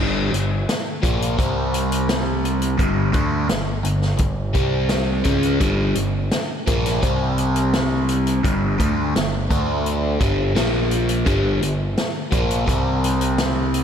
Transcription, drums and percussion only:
0.34 closed hi-hat
0.69 snare, closed hi-hat
1.03 kick, closed hi-hat
1.22 closed hi-hat
1.39 kick, closed hi-hat
1.74 closed hi-hat
1.92 closed hi-hat
2.09 snare, closed hi-hat
2.45 closed hi-hat
2.62 closed hi-hat
2.79 kick, closed hi-hat
3.14 kick, closed hi-hat
3.49 snare, closed hi-hat
3.85 closed hi-hat
4.02 snare
4.18 kick, closed hi-hat
4.55 kick, closed hi-hat
4.89 snare, closed hi-hat
5.24 kick, closed hi-hat
5.43 closed hi-hat
5.61 kick, closed hi-hat
5.95 closed hi-hat
6.31 snare, closed hi-hat
6.67 kick, closed hi-hat
6.86 snare, closed hi-hat
7.03 kick, closed hi-hat
7.38 closed hi-hat
7.56 closed hi-hat
7.73 snare, closed hi-hat
8.09 closed hi-hat
8.27 closed hi-hat
8.45 kick, closed hi-hat
8.80 kick, closed hi-hat
9.16 snare, closed hi-hat
9.51 kick, closed hi-hat
9.86 closed hi-hat
10.21 kick, closed hi-hat
10.56 snare, closed hi-hat
10.91 closed hi-hat
11.09 closed hi-hat
11.26 kick, closed hi-hat
11.62 closed hi-hat
11.97 snare, closed hi-hat
12.32 kick, closed hi-hat
12.51 closed hi-hat
12.68 kick, closed hi-hat
13.04 closed hi-hat
13.21 closed hi-hat
13.38 snare, closed hi-hat
13.74 closed hi-hat

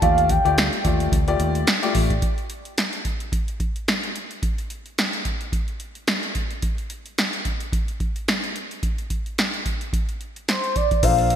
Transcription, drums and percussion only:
0.02 kick, closed hi-hat
0.18 closed hi-hat
0.29 kick, closed hi-hat
0.46 closed hi-hat
0.58 snare, closed hi-hat
0.73 closed hi-hat
0.85 kick, closed hi-hat
1.00 closed hi-hat
1.12 kick, closed hi-hat
1.28 closed hi-hat
1.40 closed hi-hat
1.55 closed hi-hat
1.67 snare, closed hi-hat
1.83 closed hi-hat
1.95 kick, open hi-hat
2.10 kick, closed hi-hat
2.22 kick, closed hi-hat
2.38 closed hi-hat
2.50 closed hi-hat
2.65 closed hi-hat
2.78 snare, closed hi-hat
2.93 closed hi-hat
3.05 kick, closed hi-hat
3.20 closed hi-hat
3.32 kick, closed hi-hat
3.48 closed hi-hat
3.60 kick, closed hi-hat
3.76 closed hi-hat
3.88 snare, closed hi-hat
4.03 closed hi-hat
4.16 closed hi-hat
4.31 closed hi-hat
4.43 kick, closed hi-hat
4.58 closed hi-hat
4.70 closed hi-hat
4.86 closed hi-hat
4.98 snare, closed hi-hat
5.13 closed hi-hat
5.25 kick, closed hi-hat
5.41 closed hi-hat
5.53 kick, closed hi-hat
5.68 closed hi-hat
5.80 closed hi-hat
5.95 closed hi-hat
6.07 snare, closed hi-hat
6.23 closed hi-hat
6.35 kick, closed hi-hat
6.51 closed hi-hat
6.62 kick, closed hi-hat
6.78 closed hi-hat
6.90 closed hi-hat
7.06 closed hi-hat
7.18 snare, closed hi-hat
7.33 closed hi-hat
7.45 kick, closed hi-hat
7.60 closed hi-hat
7.73 kick, closed hi-hat
7.88 closed hi-hat
8.00 kick, closed hi-hat
8.16 closed hi-hat
8.28 snare, closed hi-hat
8.44 closed hi-hat
8.56 closed hi-hat
8.71 closed hi-hat
8.83 kick, closed hi-hat
8.98 closed hi-hat
9.10 kick, closed hi-hat
9.26 closed hi-hat
9.38 snare, closed hi-hat
9.54 closed hi-hat
9.66 kick, closed hi-hat
9.81 closed hi-hat
9.93 kick, closed hi-hat
10.09 closed hi-hat
10.21 closed hi-hat
10.36 closed hi-hat
10.48 snare, closed hi-hat
10.64 closed hi-hat
10.76 kick, closed hi-hat
10.91 kick, closed hi-hat
11.03 kick, closed hi-hat, crash
11.19 closed hi-hat
11.30 closed hi-hat

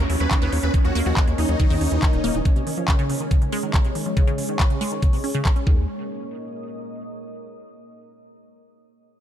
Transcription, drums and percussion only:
0.10 open hi-hat
0.31 kick, clap, closed hi-hat
0.42 closed hi-hat
0.52 open hi-hat
0.63 closed hi-hat
0.74 kick, closed hi-hat
0.85 closed hi-hat
0.95 open hi-hat
1.06 closed hi-hat
1.17 kick, clap, closed hi-hat
1.28 closed hi-hat
1.38 open hi-hat
1.49 closed hi-hat
1.60 kick, closed hi-hat
1.70 open hi-hat
1.81 open hi-hat
1.92 closed hi-hat
2.02 kick, clap, closed hi-hat
2.13 closed hi-hat
2.24 open hi-hat
2.35 closed hi-hat
2.45 kick, closed hi-hat
2.56 closed hi-hat
2.67 open hi-hat
2.77 closed hi-hat
2.88 kick, clap, closed hi-hat
2.99 closed hi-hat
3.10 open hi-hat
3.20 closed hi-hat
3.31 kick, closed hi-hat
3.42 closed hi-hat
3.52 open hi-hat
3.63 closed hi-hat
3.74 kick, clap, closed hi-hat
3.85 closed hi-hat
3.95 open hi-hat
4.06 closed hi-hat
4.17 kick, closed hi-hat
4.27 closed hi-hat
4.38 open hi-hat
4.49 closed hi-hat
4.60 kick, clap, closed hi-hat
4.70 closed hi-hat
4.81 open hi-hat
5.02 kick, closed hi-hat
5.13 open hi-hat
5.24 open hi-hat
5.35 closed hi-hat
5.45 kick, clap, closed hi-hat
5.56 closed hi-hat
5.67 kick

